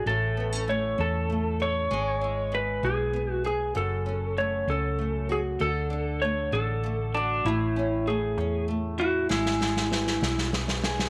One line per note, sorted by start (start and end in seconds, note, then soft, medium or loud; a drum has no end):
0.00 0.13 A3 soft
0.00 0.13 D4 medium
0.00 0.12 F#4 medium
0.06 0.94 A1 medium
0.06 1.91 A2 medium
0.06 0.70 A4 medium
0.37 0.52 B3 medium
0.52 0.97 C#4 soft
0.68 1.28 A3 soft
0.68 1.00 C#5 medium
0.98 1.87 E2 medium
0.98 1.97 C#4 medium
0.98 1.63 A4 medium
1.30 1.97 A3 soft
1.60 1.97 A4 soft
1.60 2.56 C#5 medium
1.91 2.79 G#1 medium
1.91 3.76 G#3 medium
2.21 2.82 E4 soft
2.52 3.12 B3 soft
2.52 2.85 B4 medium
2.83 3.71 B1 medium
2.83 3.82 E4 soft
2.83 3.33 G#4 medium
3.13 3.81 B3 soft
3.33 3.45 F#4 medium
3.44 3.82 G#4 medium
3.44 3.74 G#4 medium
3.75 4.64 F#1 medium
3.75 5.60 F#2 medium
3.75 4.40 A4 medium
4.06 4.67 C#4 soft
4.37 4.98 A3 soft
4.37 4.69 C#5 medium
4.67 5.56 C#2 medium
4.67 5.67 C#4 soft
4.67 5.32 A4 medium
4.99 6.22 A3 soft
5.29 5.66 F#4 medium
5.29 5.40 G#4 medium
5.60 6.49 D2 medium
5.60 7.45 D3 medium
5.60 6.24 A4 medium
5.90 6.51 D4 soft
6.22 6.83 A3 soft
6.22 6.54 C#5 medium
6.52 7.41 A1 medium
6.52 7.51 D4 medium
6.52 7.16 A4 medium
6.83 7.51 A3 soft
7.14 7.46 D4 medium
7.14 7.51 F#4 medium
7.45 8.37 A1 medium
7.45 9.30 A2 medium
7.45 8.09 E4 medium
7.76 8.37 C#4 medium
8.07 8.67 A3 soft
8.07 8.65 G#4 medium
8.37 9.26 E2 medium
8.37 9.36 C#4 soft
8.68 9.36 A3 soft
8.98 9.61 E4 medium
8.98 9.30 F#4 medium
9.29 10.18 G#1 medium
9.29 11.09 G#3 medium
9.29 10.49 E4 medium
9.29 snare soft
9.46 snare soft
9.61 10.21 E4 medium
9.61 snare soft
9.77 snare soft
9.90 10.51 B3 soft
9.90 snare medium
10.07 snare medium
10.21 11.09 B1 medium
10.21 11.09 E4 soft
10.21 snare medium
10.38 snare medium
10.53 11.09 B3 soft
10.53 snare medium
10.68 snare medium
10.84 11.09 G#4 medium
10.84 snare medium
10.99 snare medium